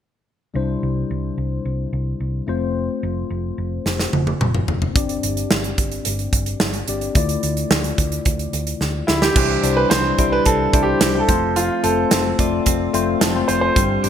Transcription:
0.54 C2 C3 G3 D4 E4 C5
0.83 C2
1.11 C2
1.38 C2
1.65 C2
1.93 C2
2.20 C2
2.47 F1 A3 C4 F4 C5
3.03 F1
3.30 F1
3.58 F1
3.86 F1, snare
3.99 snare
4.13 F1, high tom
4.27 high tom
4.40 F1, mid tom
4.55 mid tom
4.68 F1, floor tom
4.82 floor tom
4.94 G1 G2 C4 D4 G4 D5, kick, closed hi-hat
5.09 closed hi-hat
5.23 G1, closed hi-hat
5.37 closed hi-hat
5.51 G1, snare
5.64 closed hi-hat
5.78 G1, kick, closed hi-hat
5.92 closed hi-hat
6.05 G1, closed hi-hat
6.19 closed hi-hat
6.33 G1, kick, closed hi-hat
6.46 closed hi-hat
6.60 G1, snare
6.73 closed hi-hat
6.88 G1 C4 D4 G4 D5, closed hi-hat
7.01 closed hi-hat
7.14 D2 D3 A3 E4 F4 D5, kick, closed hi-hat
7.29 closed hi-hat
7.43 D2, closed hi-hat
7.57 closed hi-hat
7.71 D2, snare
7.84 closed hi-hat
7.98 D2, kick, closed hi-hat
8.12 closed hi-hat
8.25 D2, kick, closed hi-hat
8.39 closed hi-hat
8.53 D2, closed hi-hat
8.67 closed hi-hat
8.81 D2, snare
9.07 D2 E4, snare
9.22 G4, snare
9.36 C2 C3 E3 G3 D4 E4 C5, kick, crash
9.63 C2 G3 D4 E4 C5, closed hi-hat
9.77 B4
9.90 C2 C4 C5, snare, closed hi-hat
10.18 C2 G3 C4 D4 E4 C5, kick, closed hi-hat
10.32 D4 B4
10.46 C2 C4 A4, kick, closed hi-hat
10.73 C2 G3 D4 E4 C5, kick, closed hi-hat
10.83 G4
11.01 C2 G4, snare, closed hi-hat
11.14 G3 D4 E4 C5
11.20 A4
11.28 F1 F3 A3 C4 F4 C5, kick, closed hi-hat
11.56 F3 F4, closed hi-hat
11.83 F1 A3 C4 F4 A4 C5, closed hi-hat
12.11 F1 C4, snare, closed hi-hat
12.38 F1 A3 C4 F4 D5, kick, closed hi-hat
12.66 F1 C4, kick, closed hi-hat
12.93 F1 A3 C4 F4 C5, closed hi-hat
13.21 F1 A4, snare, closed hi-hat
13.35 A3 C4 F4 C5
13.48 F1 F4 C5, closed hi-hat
13.61 C5
13.76 G1 G2 G3 C4 D4 C5, kick, closed hi-hat
14.03 G1 G3 C4 D4 C5, closed hi-hat

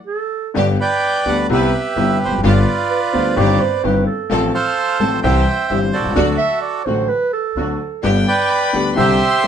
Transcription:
0.06 A4
0.54 G1 G2 D3 G3 B3 D4 G4
0.80 B4 D5 G5
1.25 D2 D3 G3 B3 D4 G4 F#5
1.49 C2 C3 G3 B3 C4 E4 G4 B4
1.54 E5
1.96 G1 G2 C3 G3 B3 C4 E4 B4
2.25 E1 E2 C5
2.32 F1 F2
2.38 F#1 F#2
2.43 G1 G2 D3 G3 B3 F4 G4 B4
2.48 D5
2.90 B4
3.13 D2 D3 G3 B3 F4 G4 C5
3.36 G1 G2 D#3 G3 C4 D#4 G4 D5
3.61 C5
3.84 G1 G2 D#3 G3 C4 D#4 G4 B4
4.06 A4
4.30 A1 A2 F3 A3 C4 F4 A4
4.54 A4 C5 F5
5.00 A1 A2 F3 A3 C4 F4 A4 A5
5.22 C2 C3 E3 G3 C4 E4 G4 C5 E5 G5
5.68 G1 G2 E3 G3 C4 E4 G4 E5
5.93 F#4 A4 D5
5.99 B1
6.04 C2
6.09 C#2
6.16 D2 D3 F#3 A3 D4 F#4
6.37 E5
6.62 D5
6.85 A1 A2 D3 F#3 A3 D4 F#4 C5
7.08 B4
7.33 A4
7.55 D2 D3 F#3 A3 D4 F#4
8.03 G1 G2 D3 G3 B3 D4 G4 G5
8.27 B4 D5 G5
8.50 B5
8.73 D2 D3 G3 B3 D4 G4 F#5
8.95 C2 C3 D3 G3 C4 D4 G4 C5 E5 C6
9.00 G4
9.43 G1 G2 D3 G3 C4 D4 G4

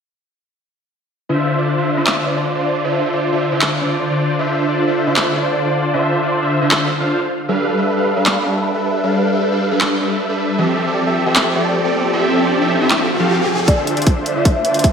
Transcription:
1.29 D3 D4 F4 C5 E5
1.58 D3 D4 F4 C5 D5
1.78 D3 D4 F4 C5 E5
1.97 D3 D4 F4 C5 E5
2.07 finger snap, clap
2.26 D3 D4 F4 C5 D5
2.55 D3 D4 F4 C5 D5
2.84 D3 D4 F4 C5 E5
3.13 D3 D4 F4 C5 D5
3.33 D3 D4 F4 C5 E5
3.52 D3 D4 F4 C5 E5
3.61 finger snap, clap
3.81 D3 D4 F4 C5 D5
4.10 D3 D4 F4 C5 D5
4.39 D3 D4 F4 C5 E5
4.68 D3 D4 F4 C5 D5
4.87 D3 D4 F4 C5 E5
5.07 D3 D4 F4 C5 E5
5.16 finger snap, clap
5.36 D3 D4 F4 C5 D5
5.65 D3 D4 F4 C5 D5
5.94 D3 D4 F4 C5 E5
6.23 D3 D4 F4 C5 D5
6.42 D3 D4 F4 C5 E5
6.61 D3 D4 F4 C5 E5
6.71 finger snap, clap
7.00 D3 D4 F4 C5 F5
7.10 D3 D4 F4 C5 F5
7.49 G3 D4 A4 B4 F5
7.78 G3 D4 A4 B4 E5
7.97 G3 D4 A4 B4 F5
8.16 G3 D4 A4 B4 F5
8.26 finger snap, clap
8.45 G3 D4 A4 B4 E5
8.74 G3 D4 A4 B4 E5
9.03 G3 D4 A4 B4 F5
9.32 G3 D4 A4 B4 E5
9.52 G3 D4 A4 B4 F5
9.71 G3 D4 A4 B4 F5
9.81 finger snap, clap
10.00 G3 D4 A4 B4 E5
10.29 G3 D4 A4 B4 E5
10.58 F3 C4 G4 A4 E5, riser
10.87 F3 C4 G4 A4 D5
11.07 F3 C4 G4 A4 E5
11.26 F3 C4 G4 A4 E5
11.36 finger snap, clap
11.55 F3 C4 G4 A4 D5
11.84 F3 C4 G4 A4 D5
12.13 F3 C4 G4 A4 E5
12.42 F3 C4 G4 A4 D5
12.61 F3 C4 G4 A4 E5
12.81 F3 C4 G4 A4 E5
12.90 finger snap, clap
13.20 F3 C4 G4 A4 F5
13.29 F3 C4 G4 A4 F5
13.68 D3 D4 F4 C5 D5 E5, kick, closed hi-hat, riser
13.87 closed hi-hat
13.97 D3 D4 F4 C5 D5, closed hi-hat
14.02 closed hi-hat
14.07 kick, closed hi-hat
14.16 D3 D4 F4 C5 E5
14.26 closed hi-hat
14.36 D3 D4 F4 C5 E5
14.45 kick, closed hi-hat
14.55 E5
14.65 D3 D4 F4 C5 D5, closed hi-hat
14.74 closed hi-hat
14.79 closed hi-hat
14.84 E5, kick, closed hi-hat

